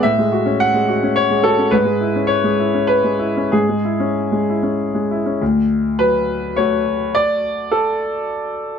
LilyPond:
\new Staff \with { instrumentName = "Grand piano" } { \time 3/4 \key d \lydian \tempo 4 = 104 << { e''4 fis''4 cis''8 a'8 | b'4 cis''4 b'4 | gis'2 r4 | r4 b'4 cis''4 |
d''4 a'2 | } \\ { a,16 gis16 fis'16 cis'8 gis16 fis'16 cis'8 gis16 fis'16 cis'16 | gis,16 gis16 e'16 cis'8 gis16 e'16 cis'8 gis16 e'16 cis'16 | gis,8 e'16 cis'8 gis16 e'16 cis'8 gis16 e'16 cis'16 | d,4 fis4 <a fis'>4~ |
<a fis'>2. | } >> }